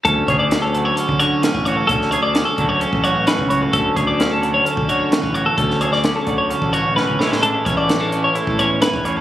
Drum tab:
HH |x-x-x-x-x-x-x-x-|x-x-x-x-x-x-x-x-|x-x-x-x-x-x-x-x-|x-x-x-x-x-x-----|
SD |----o-------o---|-o--o-------o---|----o-------o---|-o-oo-------o-oo|
BD |o-o------o---o--|o-----o--o---o--|o-o------o---o--|o-----o--o------|

HH |x-x-x-x-x-x-x-x-|
SD |----o-------o---|
BD |--o------o---o--|